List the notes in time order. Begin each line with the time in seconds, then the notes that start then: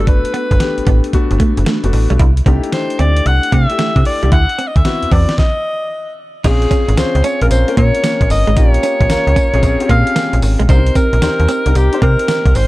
Already playing: G1 A3 B3 D4 F#4
0.07 D4 B4, kick, closed hi-hat
0.25 closed hi-hat
0.34 B3, closed hi-hat
0.51 G1, muted clean electric guitar stroke, kick, closed hi-hat
0.60 A3 B3 D4 G4, snare, closed hi-hat
0.78 A1, closed hi-hat
0.87 A1 B3, kick, closed hi-hat
1.04 closed hi-hat
1.13 A3 B3 D4 F#4, kick, closed hi-hat
1.31 G1, closed hi-hat
1.40 A3, kick, closed hi-hat
1.57 F#1, closed hi-hat
1.66 A3, snare, closed hi-hat
1.84 F#1 A3 B3 D4 F#4, muted clean electric guitar stroke, closed hi-hat
1.93 A1, open hi-hat
2.10 B1 G3, closed hi-hat
2.19 C2 E4, kick, closed hi-hat
2.37 closed hi-hat
2.46 C2 A3 C4 D4 D#4 G4, kick, closed hi-hat
2.53 E4
2.64 muted clean electric guitar stroke, closed hi-hat
2.72 C5, snare, closed hi-hat
2.90 closed hi-hat
2.99 D2 A3 C4 D4 E4 G4 D5, closed hi-hat
3.17 closed hi-hat
3.26 C2 F#5, closed hi-hat
3.43 closed hi-hat
3.52 C3 A3 E5, kick, closed hi-hat
3.69 A3 D4 E4 G4, closed hi-hat
3.79 A3, snare, closed hi-hat
3.96 C3, muted clean electric guitar stroke, kick, closed hi-hat
4.05 D5, open hi-hat
4.23 C2 G3 A3 D4 E4 G4, closed hi-hat
4.32 D2 E4 F#5, kick, closed hi-hat
4.49 closed hi-hat
4.58 C4, closed hi-hat
4.68 D#5
4.76 D2 E5, muted clean electric guitar stroke, kick, closed hi-hat
4.85 B3 C4 E4 F#4, snare, closed hi-hat
5.03 E2, closed hi-hat
5.11 E2 C4 D5, kick, open hi-hat
5.29 snare, closed hi-hat
5.38 D#5, kick, snare
6.44 A#1 C4 C#4 D#4 F4 G#4, kick, closed hi-hat, crash, tambourine
6.62 closed hi-hat
6.71 C#4, kick, closed hi-hat, tambourine
6.88 G#1, muted clean electric guitar stroke, closed hi-hat
6.97 C4 C#4 F4 G#4 C5, snare, closed hi-hat, tambourine
7.15 C#2, closed hi-hat
7.24 C#4 C#5, closed hi-hat, tambourine
7.41 A#1 C4 C#4 F4 A#4, closed hi-hat
7.51 A#1 C5, closed hi-hat, tambourine
7.68 A#3 C#4 F4 A#4, closed hi-hat
7.77 A#2 A#3 C#5, kick, closed hi-hat
7.95 closed hi-hat
8.04 A#3, snare, closed hi-hat, tambourine
8.21 A#1, muted clean electric guitar stroke, kick, closed hi-hat
8.30 G1 D#5, open hi-hat, tambourine
8.47 G#1 G#3, closed hi-hat
8.56 A#1 A#3 C#4 D#4 F4 G4 C#5, kick, closed hi-hat, tambourine
8.74 closed hi-hat
8.83 C#4, closed hi-hat, tambourine
9.01 A#1, muted clean electric guitar stroke, kick, closed hi-hat
9.10 C#2 A#3 C#4 F4 A#4, snare, closed hi-hat, tambourine
9.27 C#2, closed hi-hat
9.36 C#4, kick, closed hi-hat, tambourine
9.54 A#1 C4 C#4 F4 G#4, closed hi-hat
9.63 A#1, kick, closed hi-hat, tambourine
9.80 C4 C#4 F4 G4, closed hi-hat
9.89 A#2 A#3 F5, kick, closed hi-hat
10.07 closed hi-hat
10.16 A#3, snare, closed hi-hat, tambourine
10.33 A#1, muted clean electric guitar stroke, closed hi-hat
10.42 G#1, open hi-hat, tambourine
10.60 A#1 G#3, closed hi-hat
10.69 C2 C4 C#4 D#4 G4 A#4 C5, kick, closed hi-hat, tambourine
10.75 D#4
10.87 closed hi-hat
10.95 C4 A#4, kick, closed hi-hat, tambourine
11.13 A#1, muted clean electric guitar stroke, closed hi-hat
11.22 C4 D#4 G4 C5, snare, closed hi-hat, tambourine
11.40 D#2, closed hi-hat
11.49 C4, closed hi-hat, tambourine
11.66 C2 C4 D#4 G4 A#4, closed hi-hat
11.75 C2 G4, closed hi-hat, tambourine
11.93 C4 D#4 G4 C5, closed hi-hat
12.02 C3 A#3 A#4, kick, closed hi-hat
12.19 closed hi-hat
12.28 A#3, snare, closed hi-hat, tambourine
12.46 C2, muted clean electric guitar stroke, kick, closed hi-hat
12.55 G#1 C5, open hi-hat, tambourine